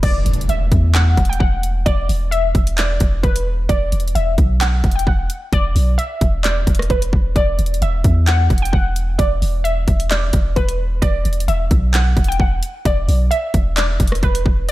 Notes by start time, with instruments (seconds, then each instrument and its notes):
0.03 808-style bass E1, synth pluck D5, kick, closed hi-hat, crash, impact
0.26 808-style bass E1, closed hi-hat
0.34 closed hi-hat
0.41 closed hi-hat
0.49 808-style bass E1, synth pluck E5, closed hi-hat
0.72 808-style bass E2, kick, closed hi-hat
0.95 synth pluck F#5, clap, closed hi-hat
1.17 808-style bass E1, kick, closed hi-hat
1.25 closed hi-hat
1.29 synth pluck G5, closed hi-hat
1.40 808-style bass E1, synth pluck F#5, kick
1.63 closed hi-hat
1.86 808-style bass E1, synth pluck D5, kick, closed hi-hat
2.09 808-style bass E1, open hi-hat
2.31 synth pluck E5, closed hi-hat
2.55 808-style bass E1, kick, closed hi-hat
2.67 closed hi-hat
2.78 synth pluck D5, clap, closed hi-hat
3.00 808-style bass E1, kick, closed hi-hat
3.23 808-style bass E1, synth pluck B4, kick, closed hi-hat
3.36 closed hi-hat
3.69 808-style bass E1, synth pluck D5, kick, closed hi-hat
3.92 808-style bass E1, closed hi-hat
4.00 closed hi-hat
4.08 closed hi-hat
4.15 808-style bass E1, synth pluck E5, closed hi-hat
4.38 808-style bass B1, kick, closed hi-hat
4.61 synth pluck F#5, clap, closed hi-hat
4.84 808-style bass E1, kick, closed hi-hat
4.92 closed hi-hat
4.96 synth pluck G5, closed hi-hat
5.07 808-style bass E1, synth pluck F#5, kick
5.30 closed hi-hat
5.53 808-style bass E1, synth pluck D5, kick, closed hi-hat
5.75 808-style bass B1, open hi-hat
5.98 synth pluck E5, closed hi-hat
6.21 808-style bass E1, kick, closed hi-hat
6.43 synth pluck D5, clap, closed hi-hat
6.67 808-style bass E1, kick, closed hi-hat
6.75 closed hi-hat
6.79 cross-stick, closed hi-hat
6.90 808-style bass E1, synth pluck B4, kick, closed hi-hat
7.02 closed hi-hat
7.13 808-style bass E1, kick
7.36 808-style bass E1, synth pluck D5, kick, closed hi-hat
7.59 808-style bass E1, closed hi-hat
7.66 closed hi-hat
7.74 closed hi-hat
7.82 808-style bass E1, synth pluck E5, closed hi-hat
8.04 808-style bass E2, kick, closed hi-hat
8.27 synth pluck F#5, clap, closed hi-hat
8.50 808-style bass E1, kick, closed hi-hat
8.58 closed hi-hat
8.62 synth pluck G5, closed hi-hat
8.73 808-style bass E1, synth pluck F#5, kick
8.96 closed hi-hat
9.19 808-style bass E1, synth pluck D5, kick, closed hi-hat
9.42 808-style bass E1, open hi-hat
9.64 synth pluck E5, closed hi-hat
9.88 808-style bass E1, kick, closed hi-hat
10.00 closed hi-hat
10.11 synth pluck D5, clap, closed hi-hat
10.33 808-style bass E1, kick, closed hi-hat
10.56 808-style bass E1, synth pluck B4, kick, closed hi-hat
10.69 closed hi-hat
11.02 808-style bass E1, synth pluck D5, kick, closed hi-hat
11.25 808-style bass E1, closed hi-hat
11.33 closed hi-hat
11.40 closed hi-hat
11.48 808-style bass E1, synth pluck E5, closed hi-hat
11.71 808-style bass B1, kick, closed hi-hat
11.94 synth pluck F#5, clap, closed hi-hat
12.17 808-style bass E1, kick, closed hi-hat
12.24 closed hi-hat
12.28 synth pluck G5, closed hi-hat
12.40 808-style bass E1, synth pluck F#5, kick
12.63 closed hi-hat
12.85 808-style bass E1, synth pluck D5, kick, closed hi-hat
13.08 808-style bass B1, open hi-hat
13.31 synth pluck E5, closed hi-hat
13.54 808-style bass E1, kick, closed hi-hat
13.76 synth pluck D5, clap, closed hi-hat
14.00 808-style bass E1, kick, closed hi-hat
14.07 closed hi-hat
14.12 cross-stick, closed hi-hat
14.23 808-style bass E1, synth pluck B4, kick, closed hi-hat
14.35 closed hi-hat
14.46 808-style bass E1, kick
14.69 synth pluck D5, closed hi-hat